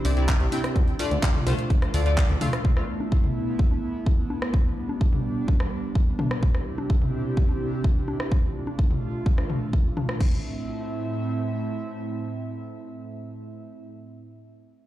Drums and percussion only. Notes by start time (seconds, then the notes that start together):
0.05 open hi-hat
0.17 closed hi-hat
0.28 kick, clap, closed hi-hat
0.40 closed hi-hat
0.52 open hi-hat, high conga
0.64 cross-stick, closed hi-hat
0.76 kick, closed hi-hat
0.88 closed hi-hat
0.99 open hi-hat
1.11 closed hi-hat, high conga
1.23 kick, clap, closed hi-hat
1.35 closed hi-hat, mid tom
1.47 open hi-hat
1.59 closed hi-hat
1.70 kick, closed hi-hat
1.82 cross-stick, closed hi-hat, high conga
1.94 open hi-hat
2.06 closed hi-hat
2.17 kick, clap, closed hi-hat
2.29 closed hi-hat
2.41 open hi-hat, mid tom, high conga
2.53 cross-stick, closed hi-hat
2.65 kick
2.77 cross-stick
3.00 high conga
3.12 kick
3.24 mid tom
3.59 kick
3.71 high conga
4.06 kick
4.30 high conga
4.42 cross-stick
4.54 kick
4.89 high conga
5.01 kick
5.13 mid tom
5.48 kick
5.60 cross-stick, high conga
5.95 kick
6.19 mid tom, high conga
6.31 cross-stick
6.43 kick
6.55 cross-stick
6.78 high conga
6.90 kick
7.02 mid tom
7.37 kick
7.49 high conga
7.84 kick
8.08 high conga
8.20 cross-stick
8.32 kick
8.67 high conga
8.79 kick
8.91 mid tom
9.26 kick
9.38 cross-stick, high conga
9.50 mid tom
9.73 kick
9.97 mid tom, high conga
10.09 cross-stick
10.20 kick, crash